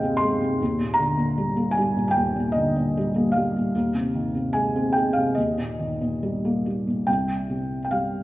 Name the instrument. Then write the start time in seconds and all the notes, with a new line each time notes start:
felt piano
Already playing: D#2 C3 D#3 G#3 C4 D#5 F5 G5 G#5
0.03 C4
0.17 C6
0.22 G#3
0.41 C3
0.61 D#2
0.79 A#2
0.94 A#5
0.98 D3
1.17 A#2
1.38 G3
1.57 A#3
1.71 G#5
1.77 G3
1.97 A#2
2.08 G5 G#5
2.16 D#2
2.36 A#2
2.52 D#5
2.56 D3
2.76 A#2
2.97 G3
3.16 A#3
3.32 F5
3.36 G3
3.56 A#2
3.75 D#2
3.94 C3
4.15 D#3
4.35 C3
4.53 G#3 G#5
4.76 C4
4.93 G#3 G5
5.13 C3 F5
5.35 D#2 D#5
5.58 A#2
5.79 D#3
6.01 A#2
6.23 G3
6.45 A#3
6.66 G3
6.87 A#2
7.07 C2 G5
7.50 C3
7.85 G5
7.91 G3 F5